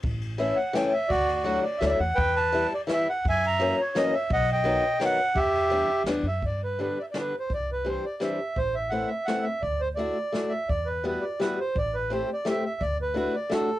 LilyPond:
<<
  \new Staff \with { instrumentName = "Accordion" } { \time 3/4 \key e \minor \tempo 4 = 169 << { r4 e''8 fis''8 g''8 e''8 | d''8. d''16 fis''8 d''8 e''32 d''32 e''16 fis''8 | g''8 a''4 d''8 e''8 fis''8 | gis''8 ais''4 cis''8 dis''8 e''8 |
fis''8 g''4. fis''4 | e''2 r8 e''8 | \key g \major d''8 b'8 b'8 d''32 e''32 d''16 b'8 c''8 | d''8 b'8 c''8 d''8 e''4 |
c''8 e''8 fis''8 e''8 fis''8 e''8 | d''8 c''8 d''4. e''8 | d''8 b'8 b'8 d''8 b'8 c''8 | d''8 b'8 c''8 d''8 e''8 e''8 |
d''8 b'8 b'8 d''8 a'4 | } \\ { r2. | fis'4. r4. | b'4. r4. | e''4. r4. |
dis''8 dis''4. r4 | g'2 r4 | r2. | r2. |
r2. | r2. | r2. | r2. |
r2. | } >> }
  \new Staff \with { instrumentName = "Steel-string acoustic guitar" } { \time 3/4 \key e \minor r4 <e a cis' e'>8 r8 <e a cis' e'>8 r8 | r4 <fis a d' e'>8 r8 <fis a d' e'>8 r8 | r4 <e g b e'>8 r8 <e g b e'>8 r8 | r4 <e fis ais cis'>8 r8 <e fis ais cis'>8 r8 |
r4 <dis fis b dis'>8 r8 <dis fis b dis'>8 r8 | r4 <e g b d'>8 r8 <e g b d'>8 r8 | \key g \major r4 <d g b d'>8 r8 <d g b d'>8 r8 | r4 <e g c' d'>8 r8 <e g c' d'>8 r8 |
r4 <a b c' e'>8 r8 <a b c' e'>8 r8 | r4 <a d' e' fis'>8 r8 <a d' e' fis'>8 r8 | r4 <g b e' fis'>8 r8 <g b e' fis'>8 r8 | r4 <a c' e' g'>8 r8 <a c' e' g'>8 r8 |
r4 <a d' e' fis'>8 r8 <a d' e' fis'>8 r8 | }
  \new Staff \with { instrumentName = "Upright bass" } { \clef bass \time 3/4 \key e \minor a,,2 r4 | d,2 d,8 e,8 | e,2 r4 | fis,2 r4 |
b,,2 r4 | e,2 e,8 fis,8 | \key g \major g,2 r4 | c,2 r4 |
a,,2 r4 | d,2 r4 | e,2 r4 | a,,2 r4 |
d,2 r4 | }
  \new DrumStaff \with { instrumentName = "Drums" } \drummode { \time 3/4 <bd cymr>8 cymr8 cymr4 <cymr sn>4 | <bd cymr>8 cymr8 cymr4 <cymr sn>4 | <bd cymr>8 cymr8 cymr4 <cymr sn>4 | <bd cymr>8 cymr8 cymr4 <cymr sn>4 |
<bd cymr>8 cymr8 cymr4 <cymr sn>4 | <bd cymr>8 cymr8 cymr4 <cymr sn>4 | <hh bd>4 hh4 <hh sn>4 | <hh bd>4 hh4 <hh sn>4 |
<hh bd>4 hh4 <hh sn>4 | <hh bd>4 hh4 <hh sn>4 | <hh bd>4 hh4 <hh sn>4 | <hh bd>4 hh4 <hh sn>4 |
<hh bd>4 hh4 <hh sn>4 | }
>>